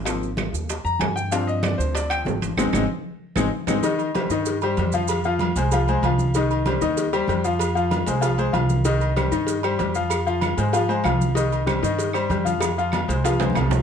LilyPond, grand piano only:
<<
  \new Staff \with { instrumentName = "Grand piano" } { \time 4/4 \key c \minor \tempo 4 = 191 r2 r8 bes''8 aes''8 g''8 | f''8 ees''8 d''8 c''8 d''8 g''8 r4 | <aes c' ees'>8 <aes c' ees'>8 r4. <aes c' ees'>8 r8 <aes c' ees'>8 | <ees ees' ees''>4 <g g' c''>8 <ees ees' ees''>4 <g g' c''>8 <g g' c''>8 <f f' f''>8~ |
<f f' f''>8 <f f' f''>4 <aes aes' c''>8 <f f' f''>8 <aes aes' c''>8 <f f' f''>4 | <ees ees' ees''>4 <g g' c''>8 <ees ees' ees''>4 <g g' c''>8 <g g' c''>8 <f f' f''>8~ | <f f' f''>8 <f f' f''>4 <aes aes' c''>8 <f f' f''>8 <aes aes' c''>8 <f f' f''>4 | <ees ees' ees''>4 <g g' c''>8 <ees ees' ees''>4 <g g' c''>8 <g g' c''>8 <f f' f''>8~ |
<f f' f''>8 <f f' f''>4 <aes aes' c''>8 <f f' f''>8 <aes aes' c''>8 <f f' f''>4 | <ees ees' ees''>4 <g g' c''>8 <ees ees' ees''>4 <g g' c''>8 <g g' c''>8 <f f' f''>8~ | <f f' f''>8 <f f' f''>4 <aes aes' c''>8 <f f' f''>8 <aes aes' c''>8 <f f' f''>4 | }
  \new Staff \with { instrumentName = "Grand piano" } { \time 4/4 \key c \minor <f bes c'>8 r2. r8 | <f c' d'>1 | r1 | r1 |
r1 | r1 | r1 | r1 |
r1 | r1 | r1 | }
>>